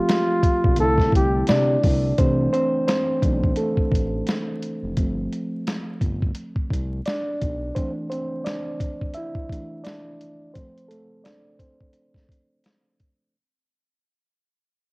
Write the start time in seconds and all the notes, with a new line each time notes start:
Already playing: F3 A3 C4 F4 G4
0.09 snare, closed hi-hat
0.43 kick, closed hi-hat
0.64 B1, kick
0.76 C2 D3 A3, closed hi-hat
0.80 C4 E4 A4
0.98 kick, snare
1.12 C2 G4, kick, closed hi-hat
1.47 C3 D4 D5, snare, closed hi-hat
1.83 C2, kick, open hi-hat
2.18 C2 E3 A3 C4 D4 C5, kick, closed hi-hat
2.53 C4 C5, closed hi-hat
2.88 C4 C5, snare, closed hi-hat
3.22 B1 E3 A3 D4, kick, closed hi-hat
3.44 kick
3.56 A3 A4, closed hi-hat
3.77 kick
3.92 A1, kick, closed hi-hat
4.27 snare, closed hi-hat
4.63 closed hi-hat
4.83 F1
4.97 G1 F3 A3 C4, kick, closed hi-hat
5.33 closed hi-hat
5.67 snare, closed hi-hat
6.01 G1, kick, closed hi-hat
6.22 kick
6.35 closed hi-hat
6.56 kick
6.70 C2, kick, closed hi-hat
7.05 D4 D5, snare, closed hi-hat
7.41 B1, kick, closed hi-hat
7.75 E3 A3 C4 D4 C5, kick, closed hi-hat
8.10 C4 C5, closed hi-hat
8.44 D4 D5, snare, closed hi-hat
8.80 kick, closed hi-hat
9.01 kick
9.14 E4 E5, closed hi-hat
9.35 kick
9.50 E3 A3 D4, kick, closed hi-hat
9.84 D4 D5, snare, closed hi-hat
10.21 closed hi-hat
10.54 F3 A3 C4 C5, kick, closed hi-hat
10.78 closed hi-hat
10.88 A3 A4, closed hi-hat
11.24 D4 D5, snare, closed hi-hat
11.59 C4 C5, kick, closed hi-hat
11.81 kick
11.93 closed hi-hat
12.14 kick, snare
12.29 kick, closed hi-hat
12.64 snare, closed hi-hat
13.00 kick, closed hi-hat